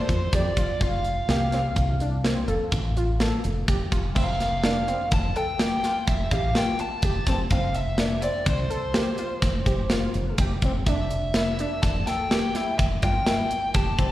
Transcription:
0.00 0.18 A4 medium
0.00 0.36 C5 medium
0.09 0.29 F2 medium
0.09 kick medium
0.09 closed hi-hat medium
0.33 0.52 F2 medium
0.33 0.50 G4 medium
0.33 0.83 D5 medium
0.33 kick loud
0.33 closed hi-hat medium
0.57 0.67 F1 medium
0.57 0.73 F4 medium
0.57 kick medium
0.57 closed hi-hat medium
0.81 1.20 F1 medium
0.81 1.13 F4 medium
0.81 3.65 F5 medium
0.81 kick loud
0.81 closed hi-hat medium
1.04 closed hi-hat medium
1.28 1.67 C2 medium
1.28 1.45 G4 medium
1.28 snare medium
1.28 closed hi-hat medium
1.52 1.85 C4 medium
1.52 snare soft
1.52 closed hi-hat medium
1.76 2.35 C2 medium
1.76 kick medium
1.76 closed hi-hat medium
2.00 2.17 D4 medium
2.00 closed hi-hat soft
2.24 2.41 C4 medium
2.24 snare medium
2.24 closed hi-hat medium
2.48 2.58 F1 medium
2.48 2.79 A4 medium
2.48 closed hi-hat medium
2.72 3.31 A1 medium
2.72 kick medium
2.72 closed hi-hat medium
2.97 3.13 F4 medium
2.97 closed hi-hat medium
3.20 3.52 A4 medium
3.20 snare medium
3.20 closed hi-hat medium
3.44 3.64 F1 medium
3.44 closed hi-hat medium
3.68 3.78 F1 medium
3.68 3.84 G4 medium
3.68 kick loud
3.68 closed hi-hat medium
3.92 4.12 F1 medium
3.92 4.08 F4 medium
3.92 kick medium
3.92 closed hi-hat medium
4.15 4.94 F1 medium
4.15 4.47 C4 loud
4.15 5.16 F5 medium
4.15 kick medium
4.15 crash medium
4.40 snare soft
4.40 closed hi-hat medium
4.64 4.80 D4 medium
4.64 snare loud
4.64 closed hi-hat medium
4.88 5.19 C4 medium
4.88 closed hi-hat soft
5.11 5.31 F1 medium
5.11 5.35 A5 medium
5.11 kick loud
5.11 closed hi-hat medium
5.36 5.52 A4 medium
5.36 6.04 G5 medium
5.36 closed hi-hat soft
5.59 5.76 G4 medium
5.59 snare medium
5.59 closed hi-hat medium
5.84 6.16 F4 medium
5.84 snare soft
5.84 closed hi-hat medium
6.07 6.27 F1 medium
6.07 6.31 E5 medium
6.07 kick loud
6.07 closed hi-hat medium
6.31 6.51 A1 medium
6.31 6.48 G4 medium
6.31 6.57 F5 medium
6.31 kick medium
6.31 closed hi-hat medium
6.55 6.87 F4 medium
6.55 6.80 G5 medium
6.55 snare medium
6.55 closed hi-hat medium
6.79 7.54 A5 medium
6.79 closed hi-hat medium
7.02 7.22 F1 medium
7.02 7.20 G4 medium
7.02 kick loud
7.02 closed hi-hat medium
7.26 7.46 F1 medium
7.26 7.43 C4 medium
7.26 kick medium
7.26 snare soft
7.26 closed hi-hat medium
7.50 8.29 F1 medium
7.50 7.83 C4 medium
7.50 7.75 F5 medium
7.50 kick loud
7.50 closed hi-hat medium
7.74 8.22 E5 medium
7.74 closed hi-hat medium
7.98 8.15 D4 medium
7.98 snare loud
7.98 closed hi-hat medium
8.22 8.54 C4 medium
8.22 8.48 D5 medium
8.22 closed hi-hat medium
8.46 8.66 C2 medium
8.46 10.35 C5 medium
8.46 kick loud
8.46 closed hi-hat medium
8.70 8.86 A4 medium
8.70 closed hi-hat medium
8.94 9.10 G4 medium
8.94 snare loud
8.94 closed hi-hat medium
9.18 9.50 F4 medium
9.18 closed hi-hat medium
9.42 9.62 F1 loud
9.42 kick loud
9.42 snare soft
9.42 closed hi-hat medium
9.66 10.06 F1 medium
9.66 9.82 G4 medium
9.66 kick medium
9.66 closed hi-hat medium
9.90 10.23 F4 medium
9.90 snare medium
9.90 closed hi-hat medium
10.14 10.35 F1 medium
10.14 closed hi-hat medium
10.38 10.58 F1 loud
10.38 10.55 G4 medium
10.38 kick loud
10.38 closed hi-hat medium
10.62 10.82 F1 loud
10.62 10.80 C4 medium
10.62 kick medium
10.62 closed hi-hat medium
10.86 11.65 F1 medium
10.86 11.19 D4 loud
10.86 11.86 E5 medium
10.86 kick loud
10.86 closed hi-hat medium
11.11 closed hi-hat medium
11.34 11.52 E4 medium
11.34 snare medium
11.34 closed hi-hat medium
11.59 11.91 D4 medium
11.59 closed hi-hat medium
11.82 12.03 F1 medium
11.82 12.07 A5 loud
11.82 kick loud
11.82 snare soft
11.82 closed hi-hat medium
12.07 12.23 A4 medium
12.07 12.81 G5 loud
12.07 snare soft
12.07 closed hi-hat medium
12.31 12.47 G4 medium
12.31 snare loud
12.31 closed hi-hat medium
12.55 12.87 E4 medium
12.55 snare soft
12.55 closed hi-hat medium
12.78 12.99 F1 medium
12.78 12.85 E5 medium
12.78 kick loud
12.78 closed hi-hat medium
13.02 13.22 G1 medium
13.02 13.19 F4 medium
13.02 13.75 G5 loud
13.02 kick medium
13.02 closed hi-hat medium
13.27 13.59 E4 medium
13.27 snare medium
13.27 closed hi-hat medium
13.51 closed hi-hat medium
13.74 13.95 F1 medium
13.74 13.91 G4 medium
13.74 14.12 A5 medium
13.74 kick loud
13.74 closed hi-hat medium
13.98 14.12 F1 medium
13.98 14.12 C4 medium
13.98 kick medium
13.98 closed hi-hat medium

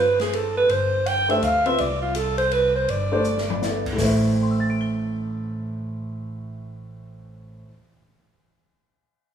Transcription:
0.00 0.65 G1 medium
0.00 0.20 B4 medium
0.19 0.36 G#4 medium
0.19 snare soft
0.19 ride soft
0.33 0.57 A4 medium
0.33 ride medium
0.57 0.73 B4 medium
0.69 1.38 G1 medium
0.69 1.09 C5 medium
0.69 ride soft
1.06 1.30 G5 loud
1.06 ride medium
1.28 1.40 A3 medium
1.28 1.41 D4 medium
1.28 1.41 G4 medium
1.28 1.41 C5 medium
1.28 1.46 E5 medium
1.28 ride soft
1.42 1.76 D2 medium
1.42 1.67 F5 medium
1.42 hi-hat pedal medium
1.42 ride medium
1.66 1.77 C4 medium
1.66 1.78 F4 medium
1.66 1.78 B4 medium
1.66 1.81 E5 medium
1.66 1.78 E5 medium
1.66 ride soft
1.78 2.85 C2 medium
1.78 2.01 D5 medium
1.78 ride medium
2.02 2.18 F4 medium
2.15 2.38 A4 medium
2.15 hi-hat pedal soft
2.15 ride medium
2.38 2.54 C5 medium
2.38 ride soft
2.51 2.75 B4 medium
2.51 ride medium
2.76 2.92 C5 medium
2.88 3.94 G1 medium
2.88 3.92 D5 medium
2.88 ride medium
3.12 3.23 A3 medium
3.12 3.23 D4 medium
3.12 3.24 G4 medium
3.12 3.24 C5 medium
3.24 hi-hat pedal medium
3.38 snare soft
3.50 floor tom medium
3.61 3.82 B3 soft
3.61 3.83 E4 soft
3.61 3.83 A4 soft
3.61 3.83 D5 medium
3.61 snare soft
3.61 hi-hat pedal medium
3.85 kick medium
3.85 crash medium
3.93 7.64 A2 medium
3.93 7.66 A3 medium
3.98 7.63 A1 medium
3.98 7.67 E4 medium
3.98 7.69 C5 medium
3.98 kick medium
3.98 snare medium
3.98 open hi-hat medium
4.05 7.70 E5 medium
4.35 7.63 G5 soft
4.43 7.67 C6 soft
4.51 7.71 E6 soft
4.60 7.76 A6 soft
4.70 7.81 D7 soft
4.81 7.86 G7 soft

